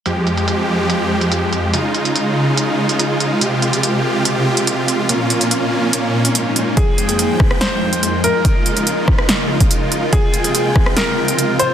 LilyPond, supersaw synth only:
\new Staff \with { instrumentName = "Supersaw synth" } { \clef bass \time 4/4 \key f \minor \tempo 4 = 143 << { <f, aes g'>1 | <des ees' f'>1 | <c g'>1 | <bes, des'>1 |
<f, aes g''>1 | <des ees' f'>1 | <c g''>1 | } \\ { f1 | aes1~ | aes1 | bes1 |
f1 | r1 | aes1 | } >> }